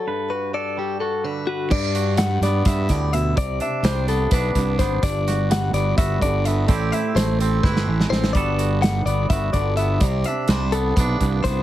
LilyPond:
<<
  \new Staff \with { instrumentName = "Clean electric guitar" } { \time 7/8 \key g \major \tempo 4 = 126 a'8 b'8 d''8 g'8 a'8 b'8 fis'8 | d''4 fis''8 d''8 e''8 d''8 e''8 | d''8 e''8 c''8 a'8 b'4 c''8 | d''4 fis''8 d''8 e''8 d''8 e''8 |
d''8 e''8 c''8 a'8 b'4 c''8 | d''4 fis''8 d''8 e''8 d''8 e''8 | d''8 e''8 c''8 a'8 b'4 c''8 | }
  \new Staff \with { instrumentName = "Clean electric guitar" } { \time 7/8 \key g \major << { b'8 fis'8 a'4 fis'4 b'8 | r8 fis'4 b2 | r8 d'4 b8 d'4 b8 | r8 fis'4 b8 fis'4 b8 |
<a c' e' g'>8 e'4 c'8 e'4 c'8 | <g b fis' a'>8 fis'4 b8 fis'4 b8 | r8 d'4 b8 d'4 b8 | } \\ { g,4. g4 d4 | g,4 g4 g,8 a,8 b,8 | c4 g4. g,4 | g,4 g4. d4 |
a,4 a4. e4 | g,4 g4. d4 | c4 g4. g,4 | } >> }
  \new Staff \with { instrumentName = "Fingered electric bass" } { \clef bass \time 7/8 \key g \major r2. r8 | g,4. g,8 g,8 d,4 | c,8 r8 c,4 b,,8 c,8 aes,,8 | g,,4. g,,8 g,,8 g,,4 |
a,,8 r8 a,,4 g,,8 a,,8 a,,8 | g,,4. g,,8 g,,8 g,,4 | c,8 r8 c,4 b,,8 c,8 c,8 | }
  \new DrumStaff \with { instrumentName = "Drums" } \drummode { \time 7/8 r4 r4 r4. | <cymc bd>8 hh8 <hh sn>8 <hh sn>8 <hh bd sn>8 <hh bd sn>8 hh8 | <hh bd>8 hh8 <hh sn>8 hh8 <hh bd>8 <hh bd>8 <hh bd sn>8 | <hh bd>8 <hh sn>8 <hh sn>8 hh8 <hh bd>8 <hh bd>8 hh8 |
<hh bd>8 hh8 <hh sn>8 hh8 <bd sn>16 sn8 sn16 sn16 sn16 | <hh bd>8 hh8 <hh sn>8 hh8 <hh bd>8 <hh bd>8 hh8 | <hh bd>8 hh8 <hh sn>8 hh8 <hh bd>8 <hh bd>8 <hh bd sn>8 | }
>>